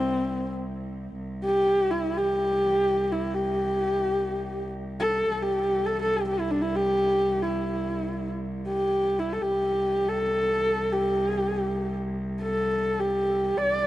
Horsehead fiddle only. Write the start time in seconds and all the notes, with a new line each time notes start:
Already playing: C4
1.45 G4
1.91 E4
2.18 G4
3.12 E4
3.34 G4
5.00 A4
5.32 A4
5.41 G4
5.86 A4
6.02 A4
6.17 G4
6.28 G4
6.40 E4
6.50 D4
6.61 E4
6.76 G4
7.43 E4
8.68 G4
9.19 E4
9.33 A4
9.42 G4
10.08 A4
10.92 G4
12.42 A4
13.00 G4
13.58 D5